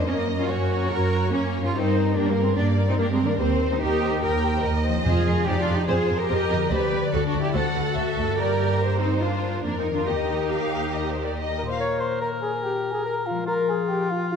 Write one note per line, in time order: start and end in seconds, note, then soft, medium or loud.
0.00 1.67 F#2 soft
0.00 3.35 A#3 soft
0.00 1.72 C#4 soft
0.00 1.69 A#4 soft
0.07 0.44 F#2 soft
0.07 0.38 A#3 medium
0.07 0.15 C#4 medium
0.07 0.27 C#5 soft
0.07 0.49 D#5 medium
0.28 0.49 A#4 soft
0.38 0.48 C#4 soft
0.38 0.49 F4 medium
0.49 0.86 F#2 medium
0.49 0.90 C#4 soft
0.49 0.91 F#4 medium
0.49 1.74 C#5 soft
0.49 0.70 C#5 soft
0.70 0.91 A#4 soft
0.91 1.28 F#2 medium
0.91 1.32 F#4 medium
0.91 1.32 A#4 medium
0.91 1.10 C#5 soft
1.12 1.33 A#4 soft
1.32 1.70 F#2 soft
1.32 1.64 A#3 medium
1.32 1.63 C#4 medium
1.32 1.54 C#5 soft
1.54 3.33 G2 soft
1.54 1.75 A#4 soft
1.62 3.26 G3 soft
1.62 1.75 C#4 soft
1.62 1.74 F4 medium
1.66 3.30 G4 soft
1.71 2.16 D#4 medium
1.71 1.94 G4 soft
1.71 5.06 A#4 soft
1.75 2.11 G2 medium
1.75 2.16 C4 soft
1.75 2.16 C5 soft
1.96 2.16 A#4 soft
2.15 2.53 G2 medium
2.15 2.30 A#3 medium
2.15 2.30 D4 medium
2.15 2.36 G4 soft
2.15 2.57 A#4 soft
2.30 2.44 G3 medium
2.30 2.44 A#3 medium
2.36 2.57 A#4 soft
2.44 2.57 G#3 soft
2.44 2.58 C4 medium
2.57 2.94 G2 medium
2.57 2.88 A#3 soft
2.57 2.65 D4 medium
2.57 2.76 G4 soft
2.57 2.99 D5 medium
2.77 2.98 A#4 soft
2.89 2.99 C4 medium
2.89 2.93 D#4 medium
2.99 3.35 G2 medium
2.99 3.04 A#3 medium
2.99 3.13 D4 medium
2.99 3.20 G4 soft
2.99 3.39 A#4 medium
3.13 3.19 G#3 medium
3.13 3.27 C4 medium
3.19 4.99 D#3 soft
3.19 3.38 A#4 soft
3.27 5.01 G3 soft
3.27 3.32 A#3 medium
3.27 3.40 D4 medium
3.31 5.03 G4 soft
3.36 3.70 C4 medium
3.36 3.59 A#4 soft
3.36 6.71 C5 soft
3.36 3.81 C5 medium
3.40 3.77 D#2 medium
3.40 3.48 G3 medium
3.60 3.81 C5 soft
3.71 3.76 C4 medium
3.71 3.82 D#4 medium
3.81 4.18 D#2 medium
3.81 4.22 D#4 medium
3.81 4.22 G4 medium
3.81 4.02 A#4 soft
3.81 4.22 A#4 medium
4.02 4.23 C5 soft
4.22 4.59 D#2 medium
4.22 4.64 G4 medium
4.22 4.42 A#4 soft
4.22 4.63 A#4 medium
4.22 4.63 G5 medium
4.44 4.65 C5 soft
4.64 5.01 D#2 medium
4.64 4.85 A#4 soft
4.64 5.47 D#5 medium
4.85 6.64 F3 soft
4.85 5.04 C5 soft
4.92 6.57 C4 soft
4.97 6.69 F4 soft
5.05 5.13 F2 medium
5.05 5.64 F2 soft
5.05 5.44 F4 medium
5.05 5.44 G#4 medium
5.05 5.25 C5 medium
5.26 5.34 F2 soft
5.26 5.35 A#4 soft
5.47 5.55 F2 soft
5.47 5.61 D#4 medium
5.47 5.61 G4 medium
5.47 5.56 C5 soft
5.47 5.88 D5 medium
5.60 5.74 D4 medium
5.60 5.75 F4 medium
5.67 5.75 F2 soft
5.67 5.75 G#4 soft
5.75 5.89 D#4 medium
5.75 5.89 G4 medium
5.88 5.96 F2 medium
5.88 6.19 F4 medium
5.88 6.19 G#4 medium
5.88 6.07 C5 medium
5.88 6.29 C5 medium
6.08 6.17 F2 soft
6.08 6.16 A#4 soft
6.19 6.71 G4 medium
6.19 6.72 A#4 medium
6.28 6.38 F2 soft
6.28 6.36 C5 soft
6.28 6.71 D#5 medium
6.49 6.58 F2 soft
6.49 6.57 G#4 soft
6.54 8.31 D3 soft
6.58 8.33 C4 soft
6.63 8.36 F#4 soft
6.67 6.91 C5 medium
6.67 8.33 D5 soft
6.71 6.79 D2 medium
6.71 7.13 G4 medium
6.71 7.12 B4 medium
6.71 7.55 D5 medium
6.91 7.00 D2 soft
6.91 6.99 B4 soft
7.13 7.21 D2 soft
7.13 7.27 F#4 medium
7.13 7.27 A4 medium
7.13 7.21 C5 soft
7.27 7.41 D4 medium
7.27 7.41 F#4 medium
7.32 7.41 D2 soft
7.32 7.40 A4 soft
7.41 7.54 E4 medium
7.41 7.55 G4 medium
7.53 7.62 D2 medium
7.53 7.84 F#4 medium
7.53 7.85 A4 medium
7.53 7.73 C5 medium
7.53 7.96 F#5 medium
7.74 7.83 D2 soft
7.74 7.82 B4 soft
7.85 8.37 F#4 medium
7.85 8.37 A4 medium
7.95 8.04 D2 soft
7.95 8.03 C5 soft
7.95 8.38 E5 medium
8.16 8.25 D2 soft
8.16 8.24 A4 soft
8.21 10.00 G2 soft
8.25 9.94 A#3 soft
8.29 10.05 F4 soft
8.34 9.17 A#4 soft
8.34 10.07 D5 soft
8.38 9.60 G2 soft
8.38 8.99 G4 medium
8.38 9.01 A#4 medium
8.38 8.79 D5 soft
8.80 9.63 C5 soft
9.01 9.22 C4 soft
9.01 9.21 D#4 medium
9.21 9.64 D4 soft
9.21 9.64 F4 soft
9.21 9.63 A#4 soft
9.64 10.06 F2 soft
9.64 9.70 A#3 soft
9.64 9.79 D4 soft
9.64 10.07 A#4 soft
9.78 9.84 C4 soft
9.78 9.86 D#4 soft
9.90 11.73 D#3 soft
9.90 10.07 D4 soft
9.95 11.66 A#3 soft
9.95 10.08 F4 soft
9.99 11.77 D#4 soft
10.04 11.60 D#2 soft
10.04 11.56 D#4 medium
10.04 11.59 G4 soft
10.04 11.80 D#5 soft
10.08 11.57 A#4 soft
10.08 10.47 D#5 soft
10.52 10.92 F5 soft
10.95 11.09 D#5 soft
11.11 11.24 C5 soft
11.25 11.38 D5 soft
11.38 11.69 D#5 soft
11.58 11.61 A#4 soft
11.58 11.65 A#5 soft
11.62 13.41 A#2 soft
11.62 11.79 C6 soft
11.67 13.43 A#3 soft
11.67 11.79 C5 medium
11.67 11.80 F5 soft
11.71 13.38 F4 soft
11.76 13.43 A#4 soft
11.76 13.47 C#5 soft
11.76 12.01 C#5 medium
11.76 11.99 C#6 medium
12.00 12.20 C5 medium
12.00 12.06 C6 medium
12.21 12.31 A#4 medium
12.21 12.28 A#5 medium
12.41 12.52 G#4 medium
12.41 12.65 G#5 soft
12.63 12.91 G4 medium
12.63 12.92 G5 medium
12.91 13.05 G#4 medium
12.91 13.05 G#5 soft
13.05 13.15 A#4 medium
13.05 13.28 A#5 medium
13.26 14.36 F3 soft
13.26 13.50 F4 medium
13.26 13.47 F5 soft
13.34 14.36 G#3 soft
13.39 14.36 F4 soft
13.43 14.36 F4 medium
13.43 14.36 C5 soft
13.47 13.72 A#4 medium
13.47 13.53 A#5 medium
13.68 13.91 G#4 medium
13.68 13.74 G#5 soft
13.88 14.11 G4 medium
13.88 14.11 G5 medium
14.10 14.31 F4 medium
14.10 14.29 F5 soft
14.30 14.36 F4 medium
14.30 14.36 F5 medium